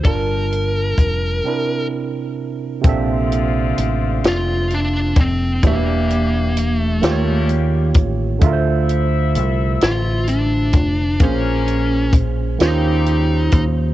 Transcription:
0.04 fingered electric bass G1, tine electric piano G3 D4 F4 A#4 A5, lead electric guitar A#4, kick, closed hi-hat
0.52 closed hi-hat
0.98 fingered electric bass F1, kick, closed hi-hat
1.44 tine electric piano C3 C4 D4 E4
1.48 tine electric piano A#4
2.81 fingered electric bass A#1, tine electric piano C3 A#3 C4, horn section D3 F3 C4 F4, kick, closed hi-hat
2.85 tine electric piano D4 A4 E5
3.32 closed hi-hat
3.78 fingered electric bass A1, closed hi-hat
4.24 fingered electric bass F1, snare, closed hi-hat
4.28 lead electric guitar F4
4.71 lead electric guitar D4, closed hi-hat
5.16 fingered electric bass F1, kick, closed hi-hat
5.21 lead electric guitar C4
5.63 fingered electric bass E1, tine electric piano E3 A#3 D4 G4, horn section E3 G3 D4 G4, lead electric guitar A#3, kick, closed hi-hat
5.67 tine electric piano E5
6.10 closed hi-hat
6.57 closed hi-hat
6.82 lead electric guitar A3
7.01 fingered electric bass D#2, horn section C#3 G3 A#3 G4, tine electric piano D#3 A#3 F4 G4 C5, snare, closed hi-hat
7.12 tine electric piano C#5
7.49 closed hi-hat
7.94 fingered electric bass A1, kick, closed hi-hat
8.39 fingered electric bass D2, tine electric piano D3 A3 E5, horn section F3 E4 A4 E5, kick, closed hi-hat
8.45 tine electric piano F4 A#4
8.53 tine electric piano C5
8.89 closed hi-hat
9.35 fingered electric bass C2, closed hi-hat
9.81 fingered electric bass A1, lead electric guitar F4, snare, closed hi-hat
10.27 lead electric guitar D4, closed hi-hat
10.73 fingered electric bass F1, kick, closed hi-hat
11.20 fingered electric bass A#1, tine electric piano A#2 A#3 C4 G#4 C5, horn section F3 A#3 C#4 A#4, lead electric guitar C#4, kick, closed hi-hat
11.28 tine electric piano C#4
11.68 closed hi-hat
12.13 kick, closed hi-hat
12.58 fingered electric bass D#2, horn section C#3 G3 C4 G4, tine electric piano D#3 A#3 C#4 F4 G4, snare, closed hi-hat
12.62 lead electric guitar D#4, tine electric piano C5
13.06 closed hi-hat
13.52 fingered electric bass D#2, kick, closed hi-hat

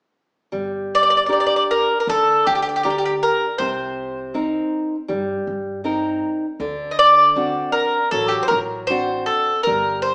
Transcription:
0.52 upright bass G1, nylon-string guitar G3
0.95 mandolin D5
1.03 mandolin D5
1.10 mandolin D5
1.17 mandolin D5
1.26 nylon-string guitar D4 G4 A#4, mandolin D5
1.33 mandolin D5
1.40 mandolin D5
1.46 mandolin D5
1.56 mandolin D5
1.71 mandolin A#4
2.00 mandolin A#4
2.07 upright bass D2, nylon-string guitar D3, mandolin A4
2.47 upright bass D2, mandolin G4
2.55 mandolin G4
2.62 mandolin G4
2.69 mandolin G4
2.76 mandolin G4
2.83 nylon-string guitar D4 G4 A#4, mandolin G4
2.90 mandolin G4
2.98 mandolin G4
3.05 mandolin G4
3.23 mandolin A#4
3.58 upright bass C2, nylon-string guitar C3, mandolin C5
4.34 nylon-string guitar C4 D#4 A#4
5.08 upright bass G2, nylon-string guitar G3
5.47 upright bass G2
5.84 nylon-string guitar C4 D#4 A#4
6.60 upright bass D2, nylon-string guitar D3
6.91 mandolin D#5
6.99 mandolin D5
7.36 nylon-string guitar C4 D4 F#4
7.72 mandolin A#4
8.11 upright bass A1, nylon-string guitar F#3, mandolin A4
8.28 mandolin G4
8.43 mandolin C5
8.48 upright bass A1, mandolin A#4
8.87 nylon-string guitar C4 D4 F#4, mandolin C5
9.26 mandolin A4
9.63 upright bass G1, nylon-string guitar G3, mandolin A#4
10.02 mandolin C5

